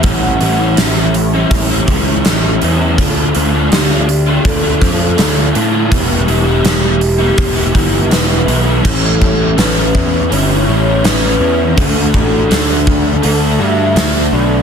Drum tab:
CC |--------|--------|--------|x-------|
HH |oooooooo|oooooooo|oooooooo|--o-o-o-|
SD |--o---o-|--o---o-|--o---o-|--o---o-|
BD |o---oo--|o---oo--|o---oo--|oo-o----|

CC |--------|
HH |o-o-o-o-|
SD |--o---o-|
BD |oo-o----|